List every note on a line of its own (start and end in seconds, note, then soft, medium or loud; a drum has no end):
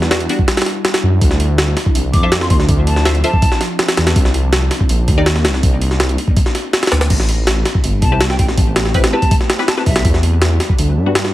0.00 0.28 E2 loud
0.00 1.18 G3 medium
0.00 7.06 D4 medium
0.00 4.12 E4 medium
0.00 1.18 F#4 medium
0.00 snare soft
0.11 0.24 G3 medium
0.11 0.24 B3 medium
0.11 0.24 D4 medium
0.11 0.24 F#4 loud
0.11 snare loud
0.11 open hi-hat medium
0.20 closed hi-hat soft
0.29 0.38 G3 loud
0.29 0.38 B3 medium
0.29 0.38 D4 medium
0.29 0.38 F#4 loud
0.29 open hi-hat medium
0.39 kick medium
0.48 snare loud
0.48 open hi-hat medium
0.57 snare medium
0.57 open hi-hat medium
0.62 snare medium
0.62 open hi-hat medium
0.66 snare soft
0.66 open hi-hat medium
0.85 snare loud
0.85 open hi-hat medium
0.94 snare loud
0.94 open hi-hat medium
1.03 1.20 F#2 loud
1.21 1.75 D2 loud
1.21 4.13 F3 medium
1.21 7.06 C4 medium
1.21 kick loud
1.21 open hi-hat medium
1.31 snare soft
1.40 open hi-hat medium
1.58 snare loud
1.58 open hi-hat medium
1.77 snare medium
1.77 open hi-hat medium
1.86 kick loud
1.95 2.15 C2 medium
1.95 open hi-hat medium
2.13 2.52 F2 loud
2.13 2.36 D6 medium
2.13 kick loud
2.13 open hi-hat medium
2.23 2.31 F4 medium
2.23 2.31 A4 medium
2.23 2.31 C5 medium
2.23 2.31 E5 medium
2.32 snare loud
2.32 open hi-hat medium
2.41 2.47 C6 medium
2.41 snare medium
2.50 2.67 D2 medium
2.50 2.56 C6 medium
2.50 kick loud
2.50 open hi-hat medium
2.60 snare soft
2.69 3.22 D2 loud
2.69 kick loud
2.69 open hi-hat medium
2.87 3.09 A5 medium
2.87 open hi-hat medium
2.96 snare soft
3.05 3.19 F4 medium
3.05 3.19 A4 medium
3.05 3.19 C5 medium
3.05 3.19 E5 loud
3.05 snare loud
3.05 open hi-hat medium
3.15 closed hi-hat soft
3.24 3.32 F4 loud
3.24 3.32 A4 medium
3.24 3.32 C5 medium
3.24 3.32 E5 loud
3.24 3.61 A5 loud
3.24 open hi-hat medium
3.33 kick medium
3.42 kick loud
3.42 open hi-hat medium
3.52 snare soft
3.61 snare soft
3.61 open hi-hat medium
3.79 snare loud
3.79 open hi-hat medium
3.88 snare loud
3.88 open hi-hat medium
3.97 4.14 E2 loud
3.97 snare loud
3.97 open hi-hat medium
4.07 snare loud
4.07 open hi-hat medium
4.16 4.70 C2 loud
4.16 7.07 A#3 medium
4.16 7.07 D#4 medium
4.16 kick loud
4.16 open hi-hat medium
4.25 snare soft
4.34 open hi-hat medium
4.53 snare loud
4.53 open hi-hat medium
4.71 snare medium
4.71 open hi-hat medium
4.80 kick loud
4.89 5.09 A#1 medium
4.89 open hi-hat medium
5.08 5.46 D#2 loud
5.08 kick medium
5.08 open hi-hat medium
5.18 5.25 D#4 medium
5.18 5.25 G4 medium
5.18 5.25 A#4 medium
5.18 5.25 D5 medium
5.26 snare loud
5.26 open hi-hat medium
5.36 snare medium
5.45 5.61 C2 medium
5.45 snare loud
5.45 open hi-hat medium
5.54 snare soft
5.63 6.17 C2 loud
5.63 kick loud
5.63 open hi-hat medium
5.81 open hi-hat medium
5.91 snare soft
6.00 snare loud
6.00 open hi-hat medium
6.09 closed hi-hat soft
6.18 open hi-hat medium
6.28 kick loud
6.37 kick loud
6.37 open hi-hat medium
6.46 snare soft
6.55 snare soft
6.55 open hi-hat medium
6.73 snare loud
6.73 open hi-hat medium
6.83 snare medium
6.83 open hi-hat medium
6.87 snare medium
6.87 open hi-hat medium
6.92 7.09 D2 loud
6.92 snare loud
6.92 open hi-hat medium
7.01 snare loud
7.01 open hi-hat medium
7.10 7.64 A1 loud
7.10 10.02 A3 medium
7.10 10.02 B3 medium
7.10 10.02 C4 medium
7.10 10.02 G4 medium
7.10 kick loud
7.10 open hi-hat medium
7.10 crash medium
7.20 snare soft
7.29 open hi-hat medium
7.47 snare loud
7.47 open hi-hat medium
7.65 snare medium
7.65 open hi-hat medium
7.75 kick medium
7.84 8.04 G1 medium
7.84 open hi-hat medium
8.02 8.41 C2 loud
8.02 8.24 A5 medium
8.02 kick loud
8.02 open hi-hat medium
8.12 8.20 C4 medium
8.12 8.20 E4 medium
8.12 8.20 G4 medium
8.12 8.20 B4 medium
8.21 snare loud
8.21 open hi-hat medium
8.30 8.36 G5 medium
8.30 snare medium
8.39 8.56 A1 medium
8.39 8.45 G5 medium
8.39 kick loud
8.39 open hi-hat medium
8.48 snare soft
8.58 9.11 A1 loud
8.58 kick loud
8.58 open hi-hat medium
8.76 snare loud
8.76 open hi-hat medium
8.85 snare soft
8.94 9.07 C4 medium
8.94 9.07 E4 medium
8.94 9.07 G4 medium
8.94 9.07 B4 loud
8.94 kick medium
8.94 open hi-hat medium
9.04 snare loud
9.04 open hi-hat medium
9.13 9.21 C4 loud
9.13 9.21 E4 medium
9.13 9.21 G4 medium
9.13 9.21 B4 loud
9.13 9.35 A5 medium
9.22 kick medium
9.22 open hi-hat medium
9.31 kick loud
9.31 open hi-hat medium
9.41 snare soft
9.50 snare loud
9.50 open hi-hat medium
9.59 9.67 C4 medium
9.59 9.67 E4 medium
9.59 9.67 G4 medium
9.59 9.67 B4 loud
9.59 snare medium
9.68 9.74 A5 medium
9.68 snare loud
9.68 open hi-hat medium
9.77 10.04 C4 medium
9.77 10.04 E4 medium
9.77 10.04 G4 medium
9.77 10.04 B4 medium
9.77 9.83 A5 medium
9.77 snare soft
9.86 10.03 B1 loud
9.86 10.09 E5 medium
9.86 kick loud
9.86 open hi-hat medium
9.96 snare loud
9.96 open hi-hat medium
10.05 10.59 E2 loud
10.05 11.34 G3 medium
10.05 11.34 E4 medium
10.05 11.34 F#4 medium
10.05 11.34 D5 medium
10.05 kick loud
10.05 open hi-hat medium
10.14 snare soft
10.23 open hi-hat medium
10.42 snare loud
10.42 open hi-hat medium
10.60 snare medium
10.60 open hi-hat medium
10.69 kick medium
10.78 10.98 D2 medium
10.78 open hi-hat medium
10.97 11.34 G2 loud
11.06 11.14 G3 medium
11.06 11.14 B3 medium
11.06 11.14 D4 medium
11.06 11.14 F#4 medium
11.15 snare loud
11.15 open hi-hat medium
11.25 snare medium